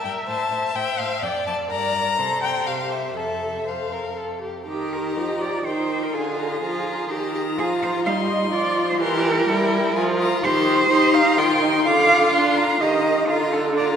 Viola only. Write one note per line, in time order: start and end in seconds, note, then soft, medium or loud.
0.00 1.24 E5 soft
1.23 1.71 D5 medium
1.71 2.20 A#4 medium
2.18 3.16 C5 soft
3.17 4.40 A4 soft
4.67 5.18 D#3 medium
5.17 5.64 F3 medium
5.65 6.13 D#3 medium
6.14 6.61 D3 medium
6.62 7.09 F3 medium
7.10 7.59 D#3 medium
7.58 8.08 F3 medium
8.06 8.52 G3 medium
8.52 9.02 F3 medium
9.00 9.47 E3 medium
9.48 9.95 G3 medium
9.95 10.42 F3 medium
10.43 10.89 D#3 medium
10.90 11.39 D#4 medium
11.38 11.85 D#3 medium
11.86 12.32 D3 medium
12.33 12.80 D4 medium
12.81 13.28 D#3 medium
13.29 13.96 D3 medium